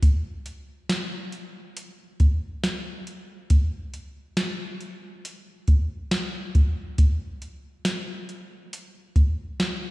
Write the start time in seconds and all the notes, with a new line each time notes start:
0.03 kick, closed hi-hat
0.46 closed hi-hat
0.89 snare, closed hi-hat, tambourine
1.32 closed hi-hat
1.77 closed hi-hat
2.20 kick, closed hi-hat
2.63 snare, closed hi-hat, tambourine
3.07 closed hi-hat
3.50 kick, closed hi-hat
3.94 closed hi-hat
4.37 snare, closed hi-hat, tambourine
4.81 closed hi-hat
5.25 closed hi-hat
5.68 kick, closed hi-hat
6.11 snare, closed hi-hat, tambourine
6.55 kick, closed hi-hat
6.98 kick, closed hi-hat
7.42 closed hi-hat
7.85 snare, closed hi-hat, tambourine
8.29 closed hi-hat
8.73 closed hi-hat
9.16 kick, closed hi-hat
9.60 snare, closed hi-hat, tambourine